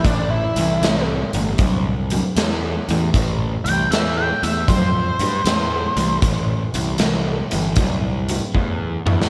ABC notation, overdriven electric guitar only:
X:1
M:4/4
L:1/8
Q:"Swing" 1/4=78
K:Am
V:1 name="Overdriven electric guitar" clef=bass
[A,,E,] [A,,E,] [A,,E,] [A,,E,] [A,,^F,] [A,,F,] [A,,E,] [A,,E,] | [A,,E,] [A,,E,] [A,,E,] [A,,E,] [A,,^F,] [A,,F,] [A,,E,] [A,,E,] | [A,,E,] [A,,E,] [A,,E,] [A,,E,] [A,,^F,] [A,,F,] [A,,E,] [A,,E,] |]